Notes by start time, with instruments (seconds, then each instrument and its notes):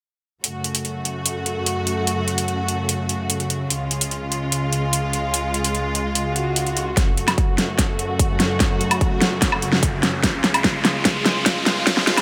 0.44 string section F#2 C#3 A3 F#4, closed hi-hat
0.64 closed hi-hat
0.75 closed hi-hat
0.85 closed hi-hat
1.05 closed hi-hat
1.26 closed hi-hat
1.46 closed hi-hat
1.66 closed hi-hat
1.87 closed hi-hat
2.07 closed hi-hat
2.28 closed hi-hat
2.38 closed hi-hat
2.48 closed hi-hat
2.68 closed hi-hat
2.89 closed hi-hat
3.09 closed hi-hat
3.30 closed hi-hat
3.40 closed hi-hat
3.50 closed hi-hat
3.70 string section C#2 G#3 F4, closed hi-hat
3.91 closed hi-hat
4.01 closed hi-hat
4.11 closed hi-hat
4.32 closed hi-hat
4.52 closed hi-hat
4.73 closed hi-hat
4.93 closed hi-hat
5.13 closed hi-hat
5.34 closed hi-hat
5.54 closed hi-hat
5.64 closed hi-hat
5.75 closed hi-hat
5.95 closed hi-hat
6.15 closed hi-hat, swell
6.36 closed hi-hat
6.56 closed hi-hat
6.67 closed hi-hat
6.77 closed hi-hat
6.97 string section F#2 C#3 A3 F#4, kick, snare, closed hi-hat, riser
7.17 closed hi-hat
7.28 snare, closed hi-hat, low woodblock
7.38 kick, closed hi-hat
7.58 snare, closed hi-hat
7.79 kick, snare, closed hi-hat
7.99 closed hi-hat
8.19 kick, closed hi-hat
8.40 snare, closed hi-hat
8.60 kick, snare, closed hi-hat
8.81 closed hi-hat
8.91 closed hi-hat, low woodblock
9.01 kick, closed hi-hat
9.22 snare, closed hi-hat
9.42 kick, snare, closed hi-hat
9.52 low woodblock
9.62 closed hi-hat
9.73 snare
9.83 kick, closed hi-hat
10.03 snare, closed hi-hat
10.24 string section C#2 G#3 F4, kick, snare, closed hi-hat
10.44 snare, closed hi-hat
10.54 closed hi-hat, low woodblock
10.64 kick, snare, closed hi-hat
10.85 snare, closed hi-hat
11.05 kick, snare, closed hi-hat
11.26 snare, closed hi-hat
11.46 kick, snare, closed hi-hat
11.66 snare, closed hi-hat
11.87 kick, snare, closed hi-hat
11.97 snare
12.07 snare, closed hi-hat
12.18 snare, closed hi-hat, low woodblock